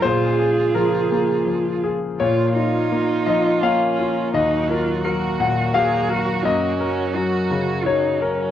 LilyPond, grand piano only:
<<
  \new Staff \with { instrumentName = "Grand piano" } { \time 3/4 \key bes \minor \tempo 4 = 85 c''4 bes'4. r8 | des''4. ees''8 f''4 | ees''4 bes'8 ges''8 f''4 | ees''2 des''4 | }
  \new Staff \with { instrumentName = "Grand piano" } { \clef bass \time 3/4 \key bes \minor bes,8 aes'8 f8 bes8 f8 aes'8 | bes,8 f'8 bes8 f8 bes8 f'8 | ees,8 bes'8 ges8 bes,8 ges8 bes'8 | ges,8 bes'8 ges8 des8 ges8 bes'8 | }
>>